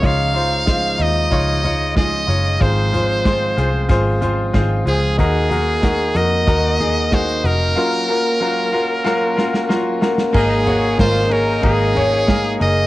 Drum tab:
CC |----------------|----------------|----------------|----------------|
RD |----------------|----------------|----------------|----------------|
HH |x-x-x-x-x-x-x-x-|x-x-x-x-x-x-x-x-|x-x-x-x-x-x-xxx-|----------------|
SD |----o-------o---|----o-------o---|----o-------o---|--------o-ooo-oo|
FT |----------o-----|--o-------o-----|--o-------o-----|----------------|
BD |o---o---o---o---|o---o---o---o---|o---o---o---o---|----------------|

CC |x---------------|
RD |--x-x-x-x-x-xxx-|
HH |----------------|
SD |----o-------o---|
FT |--o-------o-----|
BD |o---o---o---o---|